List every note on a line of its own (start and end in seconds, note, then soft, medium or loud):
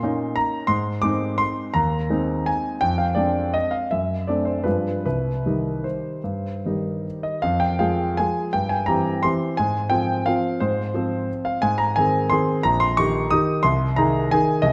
0.00 0.37 A#2 medium
0.00 0.66 A#3 soft
0.00 0.66 C#4 soft
0.00 0.67 D#4 soft
0.00 0.35 C6 medium
0.36 0.69 A#5 medium
0.67 1.02 G#2 medium
0.67 1.03 C6 medium
1.02 1.71 G#3 soft
1.02 1.71 C4 soft
1.02 1.71 D#4 soft
1.02 1.39 D6 medium
1.38 1.74 C6 medium
1.74 2.09 D#2 soft
1.74 2.47 A#5 medium
2.10 2.79 G#3 soft
2.10 2.80 C4 soft
2.10 2.80 D#4 soft
2.46 2.83 G#5 medium
2.81 3.17 F2 medium
2.81 3.00 G5 medium
2.98 3.17 F5 medium
3.15 3.86 G#3 soft
3.15 3.87 C4 soft
3.15 3.87 D4 soft
3.15 3.53 D5 medium
3.54 3.73 D#5 medium
3.71 3.90 F5 medium
3.91 4.26 F#2 soft
3.91 4.27 E5 medium
4.27 4.63 A3 soft
4.27 4.63 C4 soft
4.27 4.62 D4 soft
4.27 4.46 D5 medium
4.45 4.65 C5 soft
4.64 5.04 G2 soft
4.64 5.01 F3 soft
4.64 5.01 G#3 soft
4.64 5.02 D4 soft
4.64 5.04 B4 soft
5.06 5.44 C2 soft
5.06 5.85 B4 medium
5.46 6.21 D#3 soft
5.46 6.21 G3 soft
5.46 6.21 D#4 soft
5.84 7.24 C5 soft
6.24 6.63 G2 soft
6.65 7.40 D#3 soft
6.65 7.40 G3 soft
6.65 7.40 D#4 soft
7.23 7.43 D#5 soft
7.42 7.78 F2 medium
7.42 7.60 F5 medium
7.60 7.79 G5 medium
7.79 8.13 F3 soft
7.79 8.13 G#3 soft
7.79 8.13 G#4 soft
7.79 8.16 F5 medium
8.17 8.50 F3 soft
8.17 8.50 G#3 soft
8.17 8.51 G#4 soft
8.17 8.53 G#5 medium
8.53 8.87 G2 soft
8.53 8.70 G5 medium
8.69 8.87 G#5 medium
8.86 9.20 E3 soft
8.86 9.20 C4 soft
8.86 9.21 G4 soft
8.86 9.23 A#5 medium
9.23 9.54 E3 soft
9.23 9.54 C4 soft
9.23 9.55 G4 soft
9.23 9.57 C6 medium
9.57 9.91 G#2 soft
9.57 9.91 G#5 medium
9.90 10.23 F3 soft
9.90 10.23 C4 soft
9.90 10.24 F4 soft
9.90 10.26 G5 medium
10.26 10.58 F3 soft
10.26 10.58 C4 soft
10.26 10.59 F4 soft
10.26 10.61 F5 medium
10.60 10.93 G#2 soft
10.60 11.28 C5 medium
10.94 11.58 F3 soft
10.94 11.59 C4 soft
10.94 11.59 F4 soft
11.45 11.62 F5 medium
11.62 11.95 G#2 medium
11.62 11.78 G#5 medium
11.78 11.95 A#5 medium
11.96 12.27 D#3 soft
11.96 12.27 C4 soft
11.96 12.28 G#4 soft
11.96 12.30 G#5 medium
12.30 12.60 D#3 soft
12.30 12.60 C4 soft
12.30 12.61 G#4 soft
12.30 12.63 C6 medium
12.63 12.96 A#1 medium
12.63 12.79 A#5 medium
12.80 12.96 C6 medium
12.97 13.28 D#3 soft
12.97 13.29 D#4 soft
12.97 13.29 G4 soft
12.97 13.31 C#6 medium
13.31 13.62 D#3 soft
13.31 13.62 D#4 soft
13.31 13.62 G4 soft
13.31 13.64 D#6 medium
13.63 13.96 C2 medium
13.63 13.96 C6 medium
13.96 14.28 D#3 soft
13.96 14.28 D#4 soft
13.96 14.28 G#4 soft
13.96 14.31 A#5 medium
14.31 14.62 D#3 soft
14.31 14.62 D#4 soft
14.31 14.63 G#4 soft
14.31 14.65 G#5 medium
14.62 14.73 C2 medium
14.62 14.73 D#5 medium